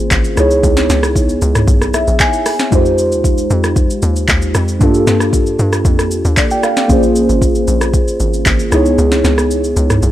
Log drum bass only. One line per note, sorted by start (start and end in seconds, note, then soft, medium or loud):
0.00 0.10 G#1 medium
0.11 0.36 G#1 loud
0.37 0.62 C#2 loud
0.64 0.88 C#2 loud
0.90 1.40 C#2 loud
1.42 1.67 C#2 loud
1.68 2.06 B1 medium
2.08 2.20 A#1 medium
2.72 3.13 F2 medium
3.12 3.49 D#2 medium
3.50 3.88 F2 medium
4.03 4.28 D#2 medium
4.29 4.54 D#2 loud
4.55 4.80 F2 medium
4.81 5.06 G2 loud
5.07 5.57 G2 loud
5.59 5.84 G2 medium
5.85 6.23 F2 medium
6.25 6.37 D#2 medium
6.90 7.28 A#1 loud
7.29 7.66 G#1 medium
7.68 8.06 A#1 loud
8.20 8.45 G#1 medium
8.46 8.71 G#1 loud
8.72 8.97 C#2 loud
8.98 9.23 C#2 loud
9.24 9.74 C#2 loud
9.77 10.02 C#2 loud
10.03 10.12 B1 medium